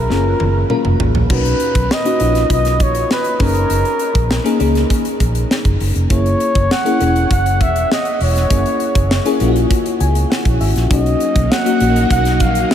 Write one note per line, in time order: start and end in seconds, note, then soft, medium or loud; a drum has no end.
0.00 0.10 C#4 medium
0.00 0.12 D#4 medium
0.00 0.12 F#4 medium
0.00 0.11 G#4 medium
0.00 1.01 A#4 medium
0.09 0.33 F#1 medium
0.09 0.58 A#3 medium
0.09 0.58 C#4 medium
0.09 0.58 F4 medium
0.09 0.58 G#4 medium
0.09 snare medium
0.40 0.63 F#1 medium
0.40 high tom medium
0.70 1.12 A#3 medium
0.70 1.12 C#4 medium
0.70 1.13 F4 medium
0.70 1.13 A#4 medium
0.70 mid tom medium
0.85 0.97 F1 medium
0.85 mid tom medium
1.00 1.12 G#1 medium
1.00 floor tom medium
1.15 1.27 A#1 medium
1.15 floor tom medium
1.29 1.53 B1 medium
1.29 1.83 A#2 medium
1.29 1.83 C#4 medium
1.29 1.83 D#4 medium
1.29 1.83 F#4 medium
1.29 1.94 B4 medium
1.29 kick loud
1.29 crash medium
1.45 closed hi-hat soft
1.60 closed hi-hat medium
1.75 1.87 B1 medium
1.75 kick medium
1.75 closed hi-hat medium
1.91 2.51 D#5 loud
1.91 snare loud
2.05 2.15 A#3 medium
2.05 2.16 C#4 medium
2.05 2.16 D#4 medium
2.05 2.16 F#4 medium
2.05 closed hi-hat medium
2.19 2.43 A#1 medium
2.19 3.04 A#3 medium
2.19 3.05 C#4 medium
2.19 3.05 D#4 medium
2.19 3.05 F4 medium
2.19 closed hi-hat medium
2.35 snare soft
2.35 closed hi-hat medium
2.50 2.80 B1 medium
2.50 2.84 D#5 loud
2.50 kick medium
2.50 closed hi-hat medium
2.65 snare soft
2.65 closed hi-hat soft
2.80 3.03 A#1 medium
2.80 3.11 C#5 medium
2.80 kick medium
2.80 closed hi-hat medium
2.95 closed hi-hat medium
3.11 3.44 B4 loud
3.11 snare loud
3.24 closed hi-hat soft
3.39 3.63 F#1 medium
3.39 4.24 A#3 medium
3.39 4.24 C#4 medium
3.39 4.24 D#4 medium
3.39 4.24 G#4 medium
3.39 4.61 A#4 medium
3.39 kick loud
3.39 open hi-hat medium
3.55 closed hi-hat soft
3.70 3.82 F#1 medium
3.70 closed hi-hat medium
3.85 closed hi-hat soft
3.99 closed hi-hat medium
4.15 4.38 A#1 medium
4.15 kick loud
4.15 closed hi-hat medium
4.31 snare loud
4.44 4.55 A#3 medium
4.44 4.56 C#4 medium
4.44 4.56 D#4 medium
4.44 4.56 G#4 medium
4.44 closed hi-hat medium
4.60 4.83 C#2 medium
4.60 5.45 A#3 medium
4.60 5.45 C#4 medium
4.60 5.45 D#4 medium
4.60 5.45 G#4 medium
4.60 closed hi-hat medium
4.75 snare soft
4.75 closed hi-hat medium
4.90 kick medium
4.90 closed hi-hat medium
5.05 closed hi-hat soft
5.20 5.43 A#1 medium
5.20 kick medium
5.20 closed hi-hat medium
5.35 closed hi-hat medium
5.51 snare loud
5.65 5.77 F#1 medium
5.65 kick medium
5.65 closed hi-hat soft
5.80 5.92 F#1 medium
5.80 open hi-hat medium
5.96 6.07 F1 medium
5.96 closed hi-hat soft
6.10 6.33 F#1 loud
6.10 6.63 A#3 medium
6.10 6.63 C#4 medium
6.10 6.63 E4 medium
6.10 6.64 G#4 medium
6.10 6.73 C#5 loud
6.10 kick loud
6.10 closed hi-hat medium
6.26 closed hi-hat soft
6.40 closed hi-hat medium
6.55 6.67 F#1 medium
6.55 kick loud
6.55 closed hi-hat soft
6.71 7.31 F#5 loud
6.71 snare loud
6.84 6.95 A#3 medium
6.84 6.96 C#4 medium
6.84 6.96 E4 medium
6.84 6.96 G#4 medium
6.84 closed hi-hat medium
7.00 7.24 E1 medium
7.00 7.85 A#3 medium
7.00 7.85 C#4 medium
7.00 7.85 E4 medium
7.00 7.86 G#4 medium
7.00 closed hi-hat medium
7.16 closed hi-hat soft
7.31 7.61 F#1 medium
7.31 7.63 F#5 loud
7.31 kick medium
7.31 closed hi-hat medium
7.46 closed hi-hat soft
7.61 7.83 E1 medium
7.61 7.91 E5 loud
7.61 kick medium
7.61 closed hi-hat medium
7.76 closed hi-hat medium
7.92 8.19 D#5 medium
7.92 snare loud
8.05 closed hi-hat soft
8.21 8.44 E1 medium
8.21 9.38 C#5 medium
8.21 open hi-hat medium
8.36 snare soft
8.36 closed hi-hat soft
8.50 8.62 F#1 medium
8.50 9.03 A#3 medium
8.50 9.03 C#4 medium
8.50 9.04 E4 medium
8.50 9.04 G#4 medium
8.50 kick loud
8.50 closed hi-hat medium
8.66 closed hi-hat soft
8.80 closed hi-hat medium
8.95 9.18 F#1 medium
8.95 kick loud
8.95 closed hi-hat medium
9.11 snare loud
9.25 9.36 A#3 medium
9.25 9.36 C#4 medium
9.25 9.36 E4 medium
9.25 9.36 G#4 loud
9.25 closed hi-hat medium
9.40 9.63 A#1 medium
9.40 10.25 A#3 medium
9.40 10.25 C#4 medium
9.40 10.26 E4 medium
9.40 9.48 F4 medium
9.40 closed hi-hat medium
9.48 10.29 F#4 medium
9.56 closed hi-hat soft
9.71 kick medium
9.71 closed hi-hat medium
9.86 closed hi-hat medium
10.00 10.23 C#2 medium
10.00 10.28 G#5 medium
10.00 closed hi-hat medium
10.15 closed hi-hat medium
10.30 10.58 F#5 medium
10.30 snare loud
10.45 10.57 A#1 medium
10.45 kick medium
10.45 closed hi-hat soft
10.61 10.72 G#1 medium
10.61 10.88 E5 medium
10.61 open hi-hat medium
10.76 10.87 A#1 medium
10.76 snare soft
10.76 closed hi-hat soft
10.90 11.13 B1 loud
10.90 12.75 F#3 medium
10.90 11.43 A#3 medium
10.90 12.75 A#3 medium
10.90 11.43 C#4 medium
10.90 11.44 D#4 medium
10.90 12.75 D#4 medium
10.90 11.44 F#4 medium
10.90 11.53 D#5 medium
10.90 kick loud
10.90 closed hi-hat medium
11.06 closed hi-hat soft
11.20 closed hi-hat medium
11.36 11.47 B1 loud
11.36 kick loud
11.36 closed hi-hat medium
11.51 12.11 F#5 loud
11.51 snare loud
11.65 11.76 A#3 medium
11.65 11.76 C#4 medium
11.65 11.76 D#4 medium
11.65 11.76 F#4 medium
11.65 closed hi-hat medium
11.80 12.04 A#1 medium
11.80 12.65 A#3 medium
11.80 12.65 C#4 medium
11.80 12.65 D#4 medium
11.80 12.65 F#4 medium
11.80 closed hi-hat medium
11.96 closed hi-hat medium
12.11 12.40 B1 medium
12.11 12.43 F#5 loud
12.11 kick medium
12.11 closed hi-hat medium
12.25 snare soft
12.25 closed hi-hat medium
12.40 12.63 A#1 medium
12.40 12.74 F5 medium
12.40 kick medium
12.40 closed hi-hat medium
12.55 closed hi-hat medium
12.71 snare loud